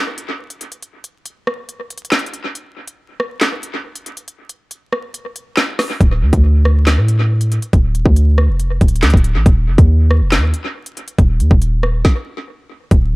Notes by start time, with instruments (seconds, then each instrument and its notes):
0.18 closed hi-hat
0.50 closed hi-hat
0.61 closed hi-hat
0.72 closed hi-hat
0.82 closed hi-hat
1.04 closed hi-hat
1.26 closed hi-hat
1.47 cross-stick
1.69 closed hi-hat
1.90 closed hi-hat
1.98 closed hi-hat
2.05 closed hi-hat
2.12 snare, clap, closed hi-hat
2.19 closed hi-hat
2.26 closed hi-hat
2.34 closed hi-hat
2.55 closed hi-hat
2.88 closed hi-hat
3.20 cross-stick
3.41 snare, clap, closed hi-hat
3.63 closed hi-hat
3.95 closed hi-hat
4.06 closed hi-hat
4.17 closed hi-hat
4.28 closed hi-hat
4.49 closed hi-hat
4.71 closed hi-hat
4.93 cross-stick
5.14 closed hi-hat
5.36 closed hi-hat
5.57 snare, clap
5.79 cross-stick, snare, open hi-hat
6.01 808-style bass D1, kick, closed hi-hat
6.22 808-style bass D2
6.33 808-style bass D2, kick, closed hi-hat
6.65 cross-stick
6.87 snare, clap, closed hi-hat
6.98 808-style bass A2
7.08 closed hi-hat
7.41 closed hi-hat
7.52 closed hi-hat
7.62 closed hi-hat
7.73 808-style bass D1, kick, closed hi-hat
7.95 808-style bass D#1, closed hi-hat
8.06 808-style bass D2, kick
8.16 closed hi-hat
8.38 cross-stick
8.49 808-style bass F1
8.60 closed hi-hat
8.81 808-style bass D1, kick, closed hi-hat
8.88 closed hi-hat
8.96 closed hi-hat
9.03 808-style bass D2, snare, clap, closed hi-hat
9.10 808-style bass D1, kick, closed hi-hat
9.17 closed hi-hat
9.24 closed hi-hat
9.35 808-style bass A1
9.46 808-style bass D#1, kick, closed hi-hat
9.68 808-style bass F1
9.78 808-style bass D#2, kick, closed hi-hat
10.11 cross-stick
10.21 808-style bass F1
10.32 snare, clap, closed hi-hat
10.38 808-style bass D#2
10.54 closed hi-hat
10.86 closed hi-hat
10.97 closed hi-hat
11.08 closed hi-hat
11.18 808-style bass D#1, kick, closed hi-hat
11.40 808-style bass D#2, closed hi-hat
11.51 808-style bass D#1, kick
11.62 closed hi-hat
11.83 cross-stick
12.05 kick, snare
12.91 808-style bass D1, kick, closed hi-hat